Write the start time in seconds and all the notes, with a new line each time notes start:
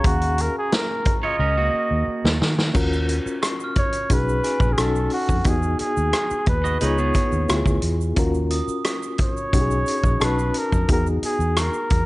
Already playing: C#4 F#4 G#4 F5 A#5 C#6
0.04 D#2 F#4, kick, closed hi-hat
0.22 closed hi-hat
0.38 A#4, closed hi-hat
0.58 G#4
0.72 A#4, snare, closed hi-hat
1.05 kick, closed hi-hat
1.23 F4 C#5 D#5
1.39 C#2 C#4 A#4
1.57 A#3 F#4
1.91 D#2
2.07 muted fingered electric bass stroke
2.24 D#2, snare
2.42 D#3, snare
2.58 snare
2.74 D#2 C#4 F4 F#4 A#4, kick, crash, shaker
2.93 shaker
3.09 closed hi-hat
3.26 muted fingered electric bass stroke, shaker
3.42 C#6, cross-stick, closed hi-hat, shaker
3.60 shaker
3.64 F6
3.75 C#5, kick, closed hi-hat
3.92 closed hi-hat, shaker
4.10 B1 C#4 D#4 F#4 G#4 B4, kick, closed hi-hat, shaker
4.29 shaker
4.44 G#5, cross-stick, closed hi-hat, shaker
4.60 A#1, kick, shaker
4.73 G#4
4.78 B1 C#4 D#4 F#4 A4, cross-stick, closed hi-hat, shaker
4.96 shaker
5.10 F#4, open hi-hat
5.29 F2, kick, shaker
5.44 E2 B3 D#4 F#4 G4, kick, closed hi-hat, shaker
5.48 G#4
5.53 G#4
5.63 shaker
5.79 G#4, muted fingered electric bass stroke, closed hi-hat
5.97 D#2, shaker
6.13 cross-stick, closed hi-hat, shaker
6.31 muted fingered electric bass stroke, shaker
6.46 D#2 B4, kick, closed hi-hat
6.64 F#4 D#5, shaker
6.81 C#2 B3 D#4 F4 G#4 B4 C#5, closed hi-hat, shaker
6.98 B3 G#4, shaker
7.14 kick, cross-stick, closed hi-hat, shaker
7.32 D#2, shaker
7.48 D2 B3 E4 F4 G4, cross-stick, closed hi-hat, shaker
7.56 G#4
7.66 D2, kick, shaker
7.82 E2, closed hi-hat
8.01 shaker
8.16 D#2 C#4 F4 F#4 A#4, kick, closed hi-hat, shaker
8.34 shaker
8.50 D#6, closed hi-hat
8.68 muted fingered electric bass stroke, shaker
8.84 cross-stick, closed hi-hat, shaker
9.03 shaker
9.18 kick, closed hi-hat
9.23 C#5
9.37 shaker
9.53 B1 C#4 D#4 F#4 G4, kick, closed hi-hat, shaker
9.61 G#4
9.71 shaker
9.86 closed hi-hat, shaker
10.03 A#1, kick, shaker
10.20 B1 C#4 D#4 F#4 B4 A5, cross-stick, closed hi-hat, shaker
10.39 shaker
10.54 closed hi-hat
10.58 A#4
10.72 F2, kick, shaker
10.88 E2 B3 D#4 F#4 G#4, kick, closed hi-hat, shaker
10.92 A#4
11.07 shaker
11.22 G#4, muted fingered electric bass stroke, closed hi-hat
11.39 E2, shaker
11.56 A#4, cross-stick, closed hi-hat, shaker
11.73 shaker
11.90 E2, kick, closed hi-hat